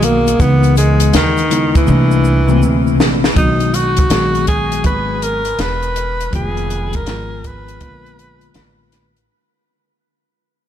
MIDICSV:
0, 0, Header, 1, 5, 480
1, 0, Start_track
1, 0, Key_signature, 5, "major"
1, 0, Tempo, 740741
1, 259, Time_signature, 4, 2, 24, 8
1, 6923, End_track
2, 0, Start_track
2, 0, Title_t, "Alto saxophone"
2, 0, Program_c, 0, 65
2, 25, Note_on_c, 0, 58, 101
2, 268, Note_on_c, 0, 59, 103
2, 278, Note_off_c, 0, 58, 0
2, 499, Note_off_c, 0, 59, 0
2, 503, Note_on_c, 0, 56, 87
2, 724, Note_off_c, 0, 56, 0
2, 752, Note_on_c, 0, 51, 84
2, 1116, Note_off_c, 0, 51, 0
2, 1144, Note_on_c, 0, 52, 88
2, 1917, Note_off_c, 0, 52, 0
2, 2185, Note_on_c, 0, 63, 92
2, 2428, Note_on_c, 0, 66, 93
2, 2438, Note_off_c, 0, 63, 0
2, 2901, Note_off_c, 0, 66, 0
2, 2904, Note_on_c, 0, 68, 100
2, 3125, Note_off_c, 0, 68, 0
2, 3150, Note_on_c, 0, 71, 95
2, 3388, Note_on_c, 0, 70, 114
2, 3398, Note_off_c, 0, 71, 0
2, 3635, Note_on_c, 0, 71, 97
2, 3645, Note_off_c, 0, 70, 0
2, 4107, Note_off_c, 0, 71, 0
2, 4117, Note_on_c, 0, 68, 98
2, 4512, Note_on_c, 0, 70, 100
2, 4521, Note_off_c, 0, 68, 0
2, 4841, Note_on_c, 0, 71, 98
2, 4851, Note_off_c, 0, 70, 0
2, 5790, Note_off_c, 0, 71, 0
2, 6923, End_track
3, 0, Start_track
3, 0, Title_t, "Tine electric piano"
3, 0, Program_c, 1, 4
3, 0, Note_on_c, 1, 51, 74
3, 0, Note_on_c, 1, 54, 65
3, 0, Note_on_c, 1, 58, 73
3, 0, Note_on_c, 1, 59, 67
3, 0, Note_on_c, 1, 66, 77
3, 190, Note_off_c, 1, 51, 0
3, 193, Note_off_c, 1, 54, 0
3, 195, Note_off_c, 1, 58, 0
3, 197, Note_off_c, 1, 59, 0
3, 199, Note_off_c, 1, 66, 0
3, 250, Note_on_c, 1, 49, 66
3, 253, Note_on_c, 1, 52, 64
3, 258, Note_on_c, 1, 56, 60
3, 263, Note_on_c, 1, 59, 61
3, 267, Note_on_c, 1, 63, 74
3, 899, Note_off_c, 1, 49, 0
3, 901, Note_off_c, 1, 52, 0
3, 903, Note_off_c, 1, 56, 0
3, 906, Note_off_c, 1, 59, 0
3, 908, Note_off_c, 1, 63, 0
3, 972, Note_on_c, 1, 49, 59
3, 975, Note_on_c, 1, 64, 62
3, 980, Note_on_c, 1, 56, 57
3, 983, Note_on_c, 1, 59, 59
3, 988, Note_on_c, 1, 63, 78
3, 1212, Note_on_c, 1, 48, 73
3, 1215, Note_off_c, 1, 49, 0
3, 1216, Note_on_c, 1, 52, 67
3, 1217, Note_off_c, 1, 64, 0
3, 1220, Note_off_c, 1, 56, 0
3, 1220, Note_on_c, 1, 57, 71
3, 1221, Note_off_c, 1, 59, 0
3, 1223, Note_off_c, 1, 63, 0
3, 1226, Note_on_c, 1, 58, 64
3, 1229, Note_on_c, 1, 62, 82
3, 1542, Note_off_c, 1, 48, 0
3, 1544, Note_off_c, 1, 52, 0
3, 1546, Note_off_c, 1, 57, 0
3, 1549, Note_off_c, 1, 58, 0
3, 1550, Note_off_c, 1, 62, 0
3, 1605, Note_on_c, 1, 48, 76
3, 1610, Note_on_c, 1, 52, 64
3, 1615, Note_on_c, 1, 57, 68
3, 1618, Note_on_c, 1, 58, 64
3, 1625, Note_on_c, 1, 60, 83
3, 2112, Note_off_c, 1, 48, 0
3, 2114, Note_off_c, 1, 52, 0
3, 2116, Note_off_c, 1, 57, 0
3, 2118, Note_off_c, 1, 58, 0
3, 2121, Note_off_c, 1, 60, 0
3, 2171, Note_on_c, 1, 51, 70
3, 2176, Note_on_c, 1, 54, 63
3, 2181, Note_on_c, 1, 56, 60
3, 2184, Note_on_c, 1, 59, 61
3, 2189, Note_on_c, 1, 66, 71
3, 2605, Note_off_c, 1, 51, 0
3, 2608, Note_off_c, 1, 54, 0
3, 2610, Note_off_c, 1, 56, 0
3, 2612, Note_off_c, 1, 59, 0
3, 2614, Note_off_c, 1, 66, 0
3, 2653, Note_on_c, 1, 51, 80
3, 2658, Note_on_c, 1, 54, 68
3, 2662, Note_on_c, 1, 56, 73
3, 2668, Note_on_c, 1, 59, 72
3, 2671, Note_on_c, 1, 68, 81
3, 3502, Note_off_c, 1, 51, 0
3, 3504, Note_off_c, 1, 54, 0
3, 3506, Note_off_c, 1, 56, 0
3, 3509, Note_off_c, 1, 59, 0
3, 3511, Note_off_c, 1, 68, 0
3, 4089, Note_on_c, 1, 51, 70
3, 4095, Note_on_c, 1, 53, 62
3, 4098, Note_on_c, 1, 56, 62
3, 4103, Note_on_c, 1, 59, 62
3, 4108, Note_on_c, 1, 65, 73
3, 4524, Note_off_c, 1, 51, 0
3, 4527, Note_off_c, 1, 53, 0
3, 4529, Note_off_c, 1, 56, 0
3, 4531, Note_off_c, 1, 59, 0
3, 4533, Note_off_c, 1, 65, 0
3, 4576, Note_on_c, 1, 51, 70
3, 4578, Note_on_c, 1, 53, 63
3, 4583, Note_on_c, 1, 56, 68
3, 4589, Note_on_c, 1, 59, 72
3, 4592, Note_on_c, 1, 65, 86
3, 5055, Note_off_c, 1, 56, 0
3, 5057, Note_on_c, 1, 49, 59
3, 5058, Note_off_c, 1, 51, 0
3, 5058, Note_off_c, 1, 53, 0
3, 5061, Note_off_c, 1, 59, 0
3, 5062, Note_on_c, 1, 56, 64
3, 5065, Note_off_c, 1, 65, 0
3, 5065, Note_on_c, 1, 58, 65
3, 5069, Note_on_c, 1, 59, 66
3, 5075, Note_on_c, 1, 65, 79
3, 5097, Note_on_c, 1, 50, 72
3, 5113, Note_off_c, 1, 49, 0
3, 5906, Note_off_c, 1, 56, 0
3, 5908, Note_off_c, 1, 58, 0
3, 5910, Note_off_c, 1, 59, 0
3, 5913, Note_off_c, 1, 65, 0
3, 5924, Note_off_c, 1, 50, 0
3, 6923, End_track
4, 0, Start_track
4, 0, Title_t, "Upright bass"
4, 0, Program_c, 2, 32
4, 0, Note_on_c, 2, 35, 91
4, 236, Note_off_c, 2, 35, 0
4, 259, Note_on_c, 2, 37, 91
4, 715, Note_off_c, 2, 37, 0
4, 735, Note_on_c, 2, 39, 92
4, 1193, Note_off_c, 2, 39, 0
4, 1217, Note_on_c, 2, 36, 101
4, 1702, Note_off_c, 2, 36, 0
4, 1702, Note_on_c, 2, 38, 90
4, 1941, Note_off_c, 2, 38, 0
4, 1941, Note_on_c, 2, 34, 84
4, 2168, Note_off_c, 2, 34, 0
4, 2180, Note_on_c, 2, 35, 94
4, 2635, Note_off_c, 2, 35, 0
4, 2659, Note_on_c, 2, 34, 88
4, 3115, Note_off_c, 2, 34, 0
4, 3140, Note_on_c, 2, 32, 88
4, 3596, Note_off_c, 2, 32, 0
4, 3620, Note_on_c, 2, 28, 83
4, 4075, Note_off_c, 2, 28, 0
4, 4102, Note_on_c, 2, 29, 90
4, 4583, Note_off_c, 2, 29, 0
4, 4583, Note_on_c, 2, 32, 90
4, 5037, Note_off_c, 2, 32, 0
4, 5061, Note_on_c, 2, 34, 91
4, 5516, Note_off_c, 2, 34, 0
4, 5541, Note_on_c, 2, 33, 83
4, 5996, Note_off_c, 2, 33, 0
4, 6923, End_track
5, 0, Start_track
5, 0, Title_t, "Drums"
5, 16, Note_on_c, 9, 42, 83
5, 16, Note_on_c, 9, 63, 60
5, 16, Note_on_c, 9, 64, 61
5, 16, Note_on_c, 9, 82, 41
5, 81, Note_off_c, 9, 42, 0
5, 81, Note_off_c, 9, 63, 0
5, 81, Note_off_c, 9, 64, 0
5, 81, Note_off_c, 9, 82, 0
5, 173, Note_on_c, 9, 82, 45
5, 179, Note_on_c, 9, 42, 54
5, 238, Note_off_c, 9, 82, 0
5, 243, Note_off_c, 9, 42, 0
5, 258, Note_on_c, 9, 36, 112
5, 258, Note_on_c, 9, 42, 69
5, 259, Note_on_c, 9, 82, 57
5, 322, Note_off_c, 9, 42, 0
5, 323, Note_off_c, 9, 36, 0
5, 324, Note_off_c, 9, 82, 0
5, 410, Note_on_c, 9, 82, 53
5, 413, Note_on_c, 9, 42, 36
5, 474, Note_off_c, 9, 82, 0
5, 478, Note_off_c, 9, 42, 0
5, 492, Note_on_c, 9, 82, 39
5, 501, Note_on_c, 9, 42, 67
5, 556, Note_off_c, 9, 82, 0
5, 566, Note_off_c, 9, 42, 0
5, 647, Note_on_c, 9, 42, 65
5, 656, Note_on_c, 9, 82, 39
5, 712, Note_off_c, 9, 42, 0
5, 721, Note_off_c, 9, 82, 0
5, 734, Note_on_c, 9, 82, 52
5, 736, Note_on_c, 9, 42, 86
5, 743, Note_on_c, 9, 38, 98
5, 798, Note_off_c, 9, 82, 0
5, 800, Note_off_c, 9, 42, 0
5, 808, Note_off_c, 9, 38, 0
5, 890, Note_on_c, 9, 82, 47
5, 897, Note_on_c, 9, 42, 33
5, 954, Note_off_c, 9, 82, 0
5, 962, Note_off_c, 9, 42, 0
5, 976, Note_on_c, 9, 64, 46
5, 976, Note_on_c, 9, 82, 32
5, 979, Note_on_c, 9, 42, 72
5, 1041, Note_off_c, 9, 64, 0
5, 1041, Note_off_c, 9, 82, 0
5, 1044, Note_off_c, 9, 42, 0
5, 1135, Note_on_c, 9, 42, 51
5, 1137, Note_on_c, 9, 36, 93
5, 1137, Note_on_c, 9, 82, 48
5, 1200, Note_off_c, 9, 42, 0
5, 1202, Note_off_c, 9, 36, 0
5, 1202, Note_off_c, 9, 82, 0
5, 1213, Note_on_c, 9, 63, 40
5, 1213, Note_on_c, 9, 82, 59
5, 1277, Note_off_c, 9, 63, 0
5, 1277, Note_off_c, 9, 82, 0
5, 1368, Note_on_c, 9, 82, 49
5, 1432, Note_off_c, 9, 82, 0
5, 1454, Note_on_c, 9, 82, 47
5, 1519, Note_off_c, 9, 82, 0
5, 1610, Note_on_c, 9, 63, 61
5, 1610, Note_on_c, 9, 82, 42
5, 1675, Note_off_c, 9, 63, 0
5, 1675, Note_off_c, 9, 82, 0
5, 1701, Note_on_c, 9, 82, 65
5, 1765, Note_off_c, 9, 82, 0
5, 1861, Note_on_c, 9, 82, 34
5, 1926, Note_off_c, 9, 82, 0
5, 1944, Note_on_c, 9, 63, 56
5, 1944, Note_on_c, 9, 64, 61
5, 1944, Note_on_c, 9, 82, 42
5, 1945, Note_on_c, 9, 38, 98
5, 2009, Note_off_c, 9, 63, 0
5, 2009, Note_off_c, 9, 64, 0
5, 2009, Note_off_c, 9, 82, 0
5, 2010, Note_off_c, 9, 38, 0
5, 2101, Note_on_c, 9, 38, 90
5, 2103, Note_on_c, 9, 82, 46
5, 2165, Note_off_c, 9, 38, 0
5, 2168, Note_off_c, 9, 82, 0
5, 2180, Note_on_c, 9, 42, 72
5, 2181, Note_on_c, 9, 36, 111
5, 2245, Note_off_c, 9, 36, 0
5, 2245, Note_off_c, 9, 42, 0
5, 2334, Note_on_c, 9, 42, 36
5, 2399, Note_off_c, 9, 42, 0
5, 2423, Note_on_c, 9, 42, 62
5, 2487, Note_off_c, 9, 42, 0
5, 2570, Note_on_c, 9, 42, 60
5, 2583, Note_on_c, 9, 36, 92
5, 2635, Note_off_c, 9, 42, 0
5, 2648, Note_off_c, 9, 36, 0
5, 2658, Note_on_c, 9, 42, 88
5, 2665, Note_on_c, 9, 38, 104
5, 2722, Note_off_c, 9, 42, 0
5, 2730, Note_off_c, 9, 38, 0
5, 2818, Note_on_c, 9, 42, 32
5, 2882, Note_off_c, 9, 42, 0
5, 2898, Note_on_c, 9, 42, 67
5, 2905, Note_on_c, 9, 36, 88
5, 2963, Note_off_c, 9, 42, 0
5, 2970, Note_off_c, 9, 36, 0
5, 3057, Note_on_c, 9, 42, 52
5, 3122, Note_off_c, 9, 42, 0
5, 3137, Note_on_c, 9, 42, 72
5, 3140, Note_on_c, 9, 36, 87
5, 3202, Note_off_c, 9, 42, 0
5, 3205, Note_off_c, 9, 36, 0
5, 3385, Note_on_c, 9, 42, 67
5, 3449, Note_off_c, 9, 42, 0
5, 3531, Note_on_c, 9, 42, 45
5, 3596, Note_off_c, 9, 42, 0
5, 3620, Note_on_c, 9, 42, 75
5, 3627, Note_on_c, 9, 38, 101
5, 3685, Note_off_c, 9, 42, 0
5, 3692, Note_off_c, 9, 38, 0
5, 3774, Note_on_c, 9, 42, 32
5, 3839, Note_off_c, 9, 42, 0
5, 3861, Note_on_c, 9, 42, 80
5, 3926, Note_off_c, 9, 42, 0
5, 4021, Note_on_c, 9, 42, 53
5, 4085, Note_off_c, 9, 42, 0
5, 4100, Note_on_c, 9, 42, 74
5, 4102, Note_on_c, 9, 36, 100
5, 4165, Note_off_c, 9, 42, 0
5, 4166, Note_off_c, 9, 36, 0
5, 4258, Note_on_c, 9, 42, 33
5, 4323, Note_off_c, 9, 42, 0
5, 4344, Note_on_c, 9, 42, 61
5, 4408, Note_off_c, 9, 42, 0
5, 4490, Note_on_c, 9, 42, 60
5, 4503, Note_on_c, 9, 36, 88
5, 4555, Note_off_c, 9, 42, 0
5, 4568, Note_off_c, 9, 36, 0
5, 4578, Note_on_c, 9, 42, 85
5, 4585, Note_on_c, 9, 38, 93
5, 4642, Note_off_c, 9, 42, 0
5, 4650, Note_off_c, 9, 38, 0
5, 4823, Note_on_c, 9, 42, 69
5, 4827, Note_on_c, 9, 36, 86
5, 4887, Note_off_c, 9, 42, 0
5, 4892, Note_off_c, 9, 36, 0
5, 4979, Note_on_c, 9, 42, 51
5, 5044, Note_off_c, 9, 42, 0
5, 5058, Note_on_c, 9, 42, 74
5, 5061, Note_on_c, 9, 36, 85
5, 5123, Note_off_c, 9, 42, 0
5, 5126, Note_off_c, 9, 36, 0
5, 5224, Note_on_c, 9, 42, 33
5, 5289, Note_off_c, 9, 42, 0
5, 5307, Note_on_c, 9, 42, 60
5, 5371, Note_off_c, 9, 42, 0
5, 5450, Note_on_c, 9, 42, 44
5, 5515, Note_off_c, 9, 42, 0
5, 5536, Note_on_c, 9, 42, 78
5, 5543, Note_on_c, 9, 38, 96
5, 5601, Note_off_c, 9, 42, 0
5, 5608, Note_off_c, 9, 38, 0
5, 5781, Note_on_c, 9, 42, 83
5, 5787, Note_on_c, 9, 38, 38
5, 5846, Note_off_c, 9, 42, 0
5, 5852, Note_off_c, 9, 38, 0
5, 5938, Note_on_c, 9, 42, 48
5, 6003, Note_off_c, 9, 42, 0
5, 6923, End_track
0, 0, End_of_file